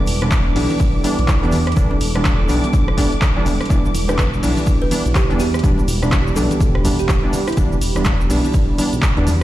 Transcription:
Already playing: ambient pad G3 D4 E4 A4 B4 D5 G5, string machine D6
0.07 analog synth bass E1, open hi-hat, shaker
0.22 synth keys E3 G3 B3 D4, cross-stick, low conga
0.31 kick, snare, clap, closed hi-hat, shaker
0.55 analog synth bass B1, synth keys E3 G3 B3 D4, open hi-hat
0.70 closed hi-hat, high conga
0.80 kick, closed hi-hat, shaker
1.04 synth keys E3 G3 B3 D4, open hi-hat, high conga, shaker
1.19 analog synth bass B1, closed hi-hat
1.28 kick, snare, clap, closed hi-hat, shaker
1.42 analog synth bass E2, synth keys E3 G3 B3 D4, closed hi-hat
1.52 snare, open hi-hat, high conga, shaker
1.67 cross-stick, closed hi-hat
1.72 closed hi-hat
1.76 analog synth bass E1, synth keys E3 G3 B3 D4, kick, closed hi-hat, shaker
1.91 high conga
2.01 analog synth bass E1, open hi-hat, shaker
2.15 synth keys E3 G3 B3 D4, cross-stick, low conga
2.25 kick, snare, clap, closed hi-hat, shaker
2.49 analog synth bass B1, synth keys E3 G3 B3 D4, open hi-hat, shaker
2.64 closed hi-hat, high conga
2.73 kick, closed hi-hat, shaker
2.88 cross-stick
2.97 synth keys E3 G3 B3 D4, kick, open hi-hat, high conga, low conga, shaker
3.12 closed hi-hat
3.22 kick, snare, clap, closed hi-hat, shaker
3.36 synth keys E3 G3 B3 D4
3.46 analog synth bass E1, open hi-hat, high conga, low conga, shaker
3.61 cross-stick, closed hi-hat
3.65 closed hi-hat
3.70 analog synth bass E1, synth keys E3 G3 B3 D4, ambient pad G4, kick, closed hi-hat, shaker
3.85 high conga, shaker
3.94 analog synth bass E1, open hi-hat, shaker
4.08 synth keys E3 G3 B3 D4, kalimba B4, cross-stick, low conga, shaker
4.15 ambient pad B5, clap
4.19 kalimba B4, kick, snare, closed hi-hat, high conga, shaker
4.34 shaker
4.42 analog synth bass B1, synth keys E3 G3 B3 D4, open hi-hat, shaker
4.57 closed hi-hat, high conga, shaker
4.67 kick, closed hi-hat, shaker
4.82 kalimba B4
4.91 synth keys E3 G3 B3 D4, open hi-hat, high conga, shaker
5.06 analog synth bass B1, closed hi-hat, shaker
5.15 kalimba G4, kick, snare, clap, closed hi-hat, shaker
5.29 analog synth bass E2, synth keys E3 G3 B3 D4, closed hi-hat
5.39 kalimba G4, snare, open hi-hat, high conga, shaker
5.54 cross-stick, closed hi-hat, shaker
5.59 closed hi-hat
5.63 analog synth bass E1, synth keys E3 G3 B3 D4, kick, closed hi-hat, shaker
5.78 high conga, shaker
5.88 analog synth bass E1, open hi-hat, shaker
6.02 synth keys E3 G3 B3 D4, cross-stick, low conga, shaker
6.12 kick, snare, clap, closed hi-hat, shaker
6.27 shaker
6.36 analog synth bass B1, synth keys E3 G3 B3 D4, kalimba A4, open hi-hat, shaker
6.51 closed hi-hat, high conga, shaker
6.60 analog synth bass E1, kick, closed hi-hat, shaker
6.75 cross-stick
6.84 synth keys E3 G3 B3 D4, kick, open hi-hat, high conga, low conga, shaker
6.99 kalimba G4, closed hi-hat, shaker
7.09 kick, snare, clap, closed hi-hat, shaker
7.23 synth keys E3 G3 B3 D4
7.33 open hi-hat, high conga, low conga, shaker
7.48 kalimba E4, cross-stick, closed hi-hat, shaker
7.52 closed hi-hat
7.57 analog synth bass E1, synth keys E3 G3 B3 D4, kick, closed hi-hat, shaker
7.72 high conga, shaker
7.81 analog synth bass E1, open hi-hat, shaker
7.96 synth keys E3 G3 B3 D4, cross-stick, closed hi-hat, low conga, shaker
8.05 kick, snare, clap, closed hi-hat, high conga, shaker
8.21 shaker
8.29 analog synth bass B1, synth keys E3 G3 B3 D4, open hi-hat, shaker
8.45 closed hi-hat, high conga, shaker
8.54 kick, closed hi-hat, shaker
8.78 synth keys E3 G3 B3 D4, open hi-hat, high conga, shaker
8.93 analog synth bass B1, closed hi-hat, shaker
9.02 kick, snare, clap, closed hi-hat, shaker
9.17 analog synth bass E2, synth keys E3 G3 B3 D4, closed hi-hat
9.27 snare, open hi-hat, high conga, shaker

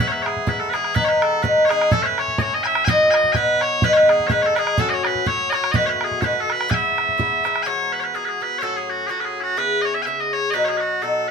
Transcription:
0.00 bouzouki G#2 E3 B3 E4
0.08 bagpipes C#5
0.12 bagpipes B4
0.22 bagpipes G#4 C#5, bodhran
0.37 bodhran
0.47 bouzouki G#2 E3 B3 E4, bagpipes B4, bodhran
0.59 bagpipes A4
0.69 bouzouki G#2, bagpipes B4
0.74 bouzouki E3 B3 E4, bagpipes G#4, bodhran
0.84 bodhran
0.94 bouzouki G#2 D#3 B3 D#4, bagpipes B4, bodhran
1.05 bagpipes C#5
1.09 bagpipes B4
1.22 bagpipes A4, bodhran
1.42 bouzouki G#2 D#3 B3 D#4, bagpipes B4, bodhran
1.65 bouzouki G#2, bagpipes C#5
1.70 bouzouki D#3 B3 D#4, bagpipes G#4, bodhran
1.81 bodhran
1.91 bouzouki A2 E3 C#4 E4, bagpipes A4, bodhran
2.03 bagpipes B4 C#5
2.18 bagpipes C#5, bodhran
2.28 bodhran
2.38 bouzouki A2 E3 C#4 E4, bagpipes C#5 D#5, bodhran
2.54 bagpipes D#5
2.63 bagpipes E5 G#5, bodhran
2.75 bodhran
2.85 bouzouki B2 F#3, bagpipes G#5, bodhran
2.89 bouzouki B3 D#4, bagpipes D#5
3.11 bagpipes G#5, bodhran
3.15 bagpipes D#5
3.24 bodhran
3.33 bouzouki B2 F#3 B3, bagpipes B4 G#5, bodhran
3.37 bouzouki D#4
3.61 bagpipes C#5, bodhran
3.82 bouzouki G#2 D#3 B3 D#4, bagpipes B4, bodhran
3.93 bagpipes B4 C#5
4.09 bagpipes G#4, bodhran
4.20 bodhran
4.27 bouzouki G#2 D#3, bagpipes C#5, bodhran
4.31 bouzouki B3 D#4, bagpipes B4
4.42 bagpipes A4 C#5
4.55 bouzouki G#2 D#3 B3 D#4, bagpipes G#4 B4, bodhran
4.67 bodhran
4.77 bouzouki A2 F#3 C#4 F#4, bagpipes A4, bodhran
4.89 bagpipes D#5
4.94 bagpipes C#5
5.03 bagpipes B4 D#5, bodhran
5.15 bodhran
5.25 bouzouki A2 F#3 C#4 F#4, bagpipes C#5, bodhran
5.50 bouzouki A2 F#3 C#4 F#4, bagpipes D#5, bodhran
5.54 bagpipes C#5
5.64 bodhran
5.71 bouzouki B2 D#3 A3 F#4, bagpipes D#5, bodhran
5.76 bagpipes B4
5.86 bagpipes B4 C#5
6.01 bagpipes G#4, bodhran
6.11 bodhran
6.21 bouzouki B2 D#3 A3 F#4, bagpipes B4 C#5, bodhran
6.40 bagpipes A4
6.50 bagpipes B4, bodhran
6.61 bodhran
6.68 bouzouki G#2 E3 B3 E4, bagpipes G#5, bodhran
6.74 bagpipes E5
6.98 bodhran
7.09 bodhran
7.18 bouzouki G#2 E3 B3 E4, bodhran
7.44 bouzouki G#2 E3 B3 E4, bodhran
7.56 bodhran
7.63 bouzouki G#2 E3 B3 F#4, bagpipes C#5 G#5
7.93 bagpipes B4
8.00 bagpipes C#5
8.04 bagpipes B4
8.14 bouzouki G#2 E3 B3 F#4, bagpipes G#4
8.25 bagpipes G#4 B4
8.40 bouzouki G#2 E3 B3 F#4, bagpipes B4
8.59 bouzouki A2 F#3 C#4, bagpipes A4 C#5
8.63 bouzouki F#4
8.77 bagpipes G#4
8.90 bagpipes F#4
9.07 bouzouki A2 F#3 C#4 F#4, bagpipes F#4 G#4
9.20 bagpipes B4
9.25 bagpipes G#4
9.42 bagpipes F#4
9.57 bouzouki C#3 B3 E4 G#4, bagpipes B4
9.82 bagpipes C#5 D#5
9.94 bagpipes E5
10.02 bagpipes E5 G#5
10.06 bouzouki C#3 B3 E4 G#4
10.20 bagpipes D#5
10.33 bagpipes C#5
10.50 bouzouki B2 F#3 D#4, bagpipes B4 D#5
10.55 bouzouki F#4
10.65 bagpipes G#4 C#5
10.77 bagpipes F#4 B4
11.02 bouzouki B2 F#3 D#4 F#4, bagpipes A4

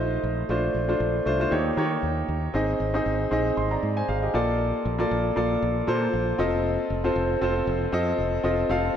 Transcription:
Already playing: grand piano A3 D#4 F4 C5 D#5
0.00 fretless electric bass A#1
0.23 fretless electric bass A#1
0.49 fretless electric bass A#1, grand piano A3 D4 F4 C5
0.75 fretless electric bass A#1
0.88 grand piano A3 D4 F4 C5
1.00 fretless electric bass A#1
1.26 fretless electric bass C2, grand piano A3 D4 F4 C5
1.40 grand piano A3 D4 F4 C5
1.51 fretless electric bass D#2, grand piano A#3 D#4 G4 C#5
1.77 fretless electric bass D#3, grand piano A#3 D#4 G4 C#5
2.03 fretless electric bass D#2
2.29 fretless electric bass D#2
2.54 fretless electric bass G#1, grand piano C4 D#4 G#4 D#5
2.80 fretless electric bass G#1
2.94 grand piano C4 D#4 G#4 D#5
3.06 fretless electric bass G#1
3.31 fretless electric bass A#1, grand piano C4 D#4 G#4 D#5
3.57 fretless electric bass G#1, grand piano D#5 C6
3.71 grand piano D5 A#5
3.83 fretless electric bass G#2
3.97 grand piano C5 G#5
4.09 fretless electric bass G#1, grand piano G#4 F5
4.22 grand piano G4 D#5
4.34 fretless electric bass A#1, grand piano A#3 F4 A4 D5
4.85 fretless electric bass A#1
4.99 grand piano A#3 F4 A4 D5
5.11 fretless electric bass A#1
5.36 fretless electric bass A#1, grand piano A#3 F4 A4 D5
5.62 fretless electric bass A#1
5.87 fretless electric bass A#2, grand piano A#3 F4 A4 C5
6.13 fretless electric bass A#1
6.38 fretless electric bass F1, grand piano C4 F4 A4 D#5
6.90 fretless electric bass F1
7.04 grand piano C4 F4 A4 C5
7.16 fretless electric bass F1
7.41 fretless electric bass F1, grand piano C4 F4 A4 C5
7.67 fretless electric bass F1
7.92 fretless electric bass F2, grand piano C4 F4 A4 D#5
8.18 fretless electric bass F1
8.43 fretless electric bass F1, grand piano C4 F4 A4 D#5
8.69 fretless electric bass F1, grand piano C4 F4 A4 F5

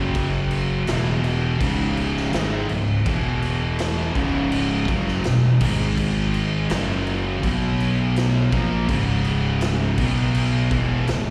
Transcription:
Already playing: fingered electric bass F#1, distorted electric guitar F#2 C#3 F#3
0.15 kick, crash
0.51 crash
0.87 fingered electric bass E1, distorted electric guitar E2 B2 E3, snare, crash
1.24 crash
1.60 fingered electric bass C#1, distorted electric guitar C#2 G#2 C#3, kick, crash
1.97 crash
2.17 snare
2.33 fingered electric bass G#1, distorted electric guitar G#2 D#3 G#3, snare, crash
2.69 fingered electric bass C#1, distorted electric guitar C#2 G#2, crash
3.06 fingered electric bass E1, distorted electric guitar E2 B2 E3, kick, crash
3.42 crash
3.79 snare, crash
4.15 fingered electric bass C#1, distorted electric guitar C#2 G#2 C#3, kick, crash
4.52 crash
4.88 fingered electric bass F#1, distorted electric guitar F#2 C#3 F#3, kick, crash
5.08 snare
5.24 fingered electric bass E1, distorted electric guitar E2 B2, snare, crash
5.61 fingered electric bass G#1, distorted electric guitar G#2 D#3 G#3, kick, crash
5.97 kick, crash
6.34 crash
6.70 fingered electric bass F#1, distorted electric guitar F#2 C#3 F#3, snare, crash
7.07 crash
7.43 fingered electric bass B1, distorted electric guitar B2 F#3 B3, kick, crash
7.80 crash
8.16 snare, crash
8.52 fingered electric bass A#1, distorted electric guitar A#2 F3 A#3, kick, crash
8.88 fingered electric bass C#1, distorted electric guitar C#2 G#2 C#3, kick, crash
9.24 crash
9.61 snare, crash
9.98 fingered electric bass B1, distorted electric guitar B2 F#3 B3, kick, crash
10.35 crash
10.71 fingered electric bass E1, distorted electric guitar E2 B2 E3, kick, crash
11.07 fingered electric bass C#1, distorted electric guitar C#2 G#2, snare, crash

